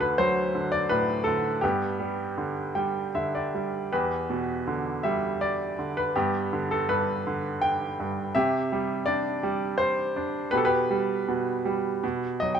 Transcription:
0.00 1.59 D2 soft
0.00 0.53 D3 soft
0.00 0.51 F#4 soft
0.00 1.24 A4 medium
0.00 0.19 B4 medium
0.18 1.59 F#3 soft
0.18 0.74 C5 medium
0.55 1.26 D3 soft
0.72 0.90 D5 medium
0.89 1.61 A2 soft
0.89 1.27 B4 medium
1.24 1.62 D3 soft
1.24 1.63 A4 medium
1.61 3.87 G2 soft
1.61 3.10 B3 soft
1.61 3.09 G4 medium
2.00 2.74 G3 soft
2.38 3.13 D3 soft
2.75 3.53 G3 soft
2.75 3.11 G5 soft
3.15 3.89 D3 soft
3.15 3.32 E5 soft
3.35 3.88 D5 soft
3.54 3.91 G3 soft
3.92 6.12 E2 soft
3.92 5.00 G4 soft
3.92 5.07 B4 medium
4.30 5.74 B2 soft
4.67 5.77 D3 soft
5.03 6.12 G3 soft
5.03 5.42 E5 medium
5.41 5.98 D5 medium
5.79 6.14 D3 soft
5.97 6.16 B4 medium
6.16 6.87 G2 medium
6.16 7.22 B3 soft
6.16 6.72 G4 medium
6.53 7.25 D3 soft
6.71 6.89 A4 medium
6.89 7.98 G2 soft
6.89 7.64 B4 medium
7.27 8.32 D3 soft
7.62 8.37 G5 medium
8.00 8.34 G2 soft
8.35 10.49 C3 medium
8.35 9.39 G4 medium
8.35 9.09 E5 medium
8.72 9.42 G3 soft
9.06 10.15 D4 soft
9.06 9.81 D5 medium
9.43 10.49 G3 soft
9.78 10.54 C5 medium
10.16 10.52 D4 soft
10.51 11.27 B2 medium
10.51 10.65 G4 soft
10.51 10.59 B4 medium
10.57 10.65 A4 medium
10.65 12.37 G4 soft
10.65 12.46 B4 medium
10.91 11.64 G3 soft
11.28 12.02 B2 soft
11.65 12.02 G3 soft
12.04 12.60 B2 medium
12.40 12.60 F#3 soft
12.40 12.55 D#5 medium
12.55 12.60 G5 medium

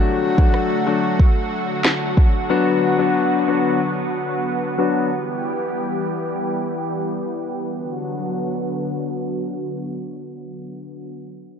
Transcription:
0.00 5.07 D3 medium
0.00 0.34 F#3 medium
0.00 5.07 F#3 medium
0.00 0.34 A3 medium
0.00 2.47 A3 medium
0.00 0.34 D4 medium
0.00 0.34 F#4 medium
0.00 5.07 F#4 medium
0.38 0.83 F#3 medium
0.38 0.83 A3 medium
0.38 0.83 D4 medium
0.38 0.83 F#4 medium
0.38 kick loud
0.54 cross-stick medium
0.86 1.17 F#3 medium
0.86 1.17 A3 medium
0.86 1.17 D4 medium
0.86 1.17 F#4 medium
1.20 kick medium
1.85 cross-stick loud
1.85 snare loud
2.17 kick medium
2.49 2.95 F#3 medium
2.49 2.95 B3 medium
2.49 7.68 B3 medium
2.49 2.95 D4 medium
2.49 2.95 F#4 loud
2.98 3.44 F#3 medium
2.98 3.44 B3 medium
2.98 3.44 D4 medium
2.98 3.44 F#4 medium
3.47 3.78 F#3 medium
3.47 3.78 B3 medium
3.47 3.78 D4 medium
3.47 3.78 F#4 medium
4.78 5.08 F#3 medium
4.78 5.08 B3 medium
4.78 5.08 D4 medium
4.78 5.08 F#4 medium
5.11 7.69 E3 medium
5.11 7.69 G3 medium
5.11 7.69 G4 medium
7.71 11.09 D3 medium
7.71 11.08 F#3 medium
7.71 11.08 B3 medium
7.71 11.08 F#4 medium

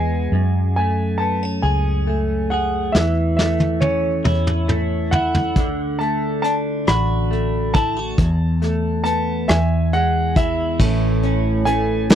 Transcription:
0.00 0.29 E2 medium
0.00 0.33 E2 medium
0.00 0.77 G#3 medium
0.00 0.41 B3 soft
0.00 0.75 G#5 medium
0.32 1.59 F#2 medium
0.32 2.95 F#2 medium
0.76 2.07 A3 soft
0.76 1.21 G#5 medium
1.18 1.43 B3 soft
1.18 1.64 A5 medium
1.43 3.04 C#4 soft
1.62 2.90 C#2 medium
1.62 2.50 G#4 medium
1.62 2.53 G#5 medium
2.07 3.38 A3 soft
2.50 3.03 G#4 medium
2.50 2.95 F#5 medium
2.92 4.22 E2 medium
2.92 5.57 E3 medium
2.92 3.35 E5 medium
2.92 snare medium
3.37 4.68 A3 soft
3.37 3.82 E5 medium
3.37 snare medium
3.60 high tom soft
3.80 5.64 C#4 medium
3.80 5.08 C#5 medium
3.80 high tom medium
4.24 5.56 E2 medium
4.24 5.12 E4 medium
4.24 mid tom medium
4.47 mid tom medium
4.68 6.00 A3 soft
4.68 mid tom medium
5.11 5.65 E4 medium
5.11 5.95 F#5 medium
5.11 floor tom medium
5.35 floor tom medium
5.56 6.83 D2 medium
5.56 8.19 D3 medium
5.56 kick medium
5.56 closed hi-hat medium
5.99 7.30 A3 medium
5.99 6.41 A5 medium
5.99 closed hi-hat soft
6.42 8.27 D4 medium
6.42 6.52 A5 medium
6.42 closed hi-hat medium
6.87 8.14 A1 medium
6.87 7.74 F#4 medium
6.87 7.77 B5 medium
6.87 cross-stick medium
6.87 closed hi-hat medium
7.31 8.27 A3 soft
7.31 closed hi-hat soft
7.74 7.97 E4 medium
7.74 9.02 A5 medium
7.74 kick medium
7.74 closed hi-hat medium
7.97 8.27 F#4 soft
8.18 9.45 E2 medium
8.18 9.49 E2 medium
8.18 kick medium
8.18 closed hi-hat medium
8.62 9.58 A3 medium
8.62 cross-stick soft
8.62 closed hi-hat soft
9.04 9.57 B3 medium
9.04 9.49 A5 medium
9.04 closed hi-hat medium
9.48 10.76 E2 medium
9.48 10.89 E2 medium
9.48 9.89 E5 medium
9.48 10.43 G#5 medium
9.48 cross-stick loud
9.48 closed hi-hat medium
9.93 10.89 G#3 medium
9.93 10.33 F#5 medium
9.93 closed hi-hat soft
10.36 12.15 E4 medium
10.36 11.19 E5 medium
10.36 kick medium
10.36 closed hi-hat medium
10.79 12.15 A1 loud
10.79 11.67 A2 medium
10.79 12.15 A2 medium
10.79 11.66 E3 medium
10.79 11.67 A3 medium
10.79 11.68 C#4 medium
10.79 11.68 A4 medium
10.79 kick loud
10.79 crash loud
11.23 12.10 C#4 medium
11.23 closed hi-hat medium
11.65 12.10 E3 medium
11.65 12.15 A3 medium
11.65 12.10 A3 medium
11.65 12.10 C#4 medium
11.65 12.09 A4 medium
11.65 12.15 G#5 medium
11.65 closed hi-hat medium
12.10 12.15 E3 medium
12.10 12.15 A3 medium
12.10 12.15 C#4 medium
12.10 12.15 A4 medium
12.10 snare loud
12.10 closed hi-hat medium

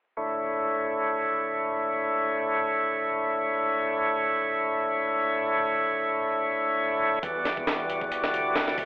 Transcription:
0.17 7.19 D3 medium
0.17 7.19 A3 medium
0.17 7.19 E4 medium
0.17 7.19 C#5 medium
7.23 8.29 E2 loud
7.23 8.85 E3 medium
7.23 8.85 G3 medium
7.23 8.85 F#4 medium
7.23 8.85 D5 medium
7.23 kick loud
7.23 closed hi-hat medium
7.45 snare soft
7.45 closed hi-hat medium
7.57 kick medium
7.67 snare loud
7.67 closed hi-hat medium
7.90 closed hi-hat medium
8.01 kick medium
8.12 closed hi-hat medium
8.24 snare soft
8.33 8.85 D2 medium
8.33 closed hi-hat medium
8.55 snare loud
8.55 closed hi-hat medium
8.68 snare soft
8.78 kick medium
8.78 open hi-hat medium

